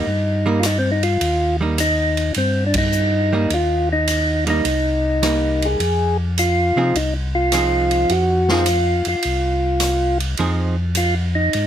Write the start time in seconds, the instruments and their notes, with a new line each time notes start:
Already playing: tonewheel organ D#4
0.07 tonewheel organ G2
0.46 hollow-body jazz guitar G3 A#3 D#4
0.60 tonewheel organ F4, cross-stick, hi-hat pedal, ride
0.66 tonewheel organ D#4
0.79 tonewheel organ C4
0.92 tonewheel organ D#4
1.03 tonewheel organ F4, ride
1.21 tonewheel organ D#2, ride
1.61 hollow-body jazz guitar G3 A#3 D#4
1.78 tonewheel organ D#4, hi-hat pedal, ride
2.17 ride
2.34 tonewheel organ G2 C4, ride
2.66 tonewheel organ D4
2.74 kick, ride
2.78 tonewheel organ D#4
2.92 hi-hat pedal
3.33 hollow-body jazz guitar G3 A#3 D#4
3.50 tonewheel organ D#2 F4, ride
3.92 tonewheel organ D#4
4.08 hi-hat pedal, ride
4.47 hollow-body jazz guitar G3 A#3 D#4, tonewheel organ D#4, ride
4.65 tonewheel organ C2, ride
5.23 hollow-body jazz guitar G3 A#3 D#4, cross-stick, hi-hat pedal, ride
5.62 tonewheel organ G#4, ride
5.80 tonewheel organ F2, ride
6.38 tonewheel organ F4, hi-hat pedal, ride
6.76 tonewheel organ C3, hollow-body jazz guitar F3 C4 D#4 G#4
6.95 tonewheel organ C2 D#4, ride
7.35 tonewheel organ F4
7.52 hollow-body jazz guitar F3 C4 D#4 G#4, cross-stick, hi-hat pedal, ride
7.91 ride
8.09 tonewheel organ F2 F#4, ride
8.49 hollow-body jazz guitar F3 C4 D#4 G#4, tonewheel organ F4, snare
8.66 hi-hat pedal, ride
9.05 tonewheel organ F2 F4, ride
9.23 tonewheel organ C2, ride
9.80 cross-stick, hi-hat pedal, ride
10.20 ride
10.37 tonewheel organ F2, hollow-body jazz guitar F3 C4 D#4 G#4, ride
10.95 tonewheel organ F4, hi-hat pedal, ride
11.35 tonewheel organ D#4
11.53 tonewheel organ G#2, ride